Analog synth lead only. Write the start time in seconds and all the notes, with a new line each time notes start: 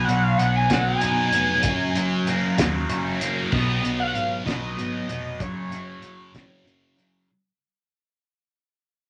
0.05 F#5
0.23 F5
0.38 F#5
0.56 G#5
0.72 F#5
0.89 G#5
3.54 D#5
4.00 F5 F#5
4.07 F#5
4.15 F5
4.46 D#5
5.42 C#5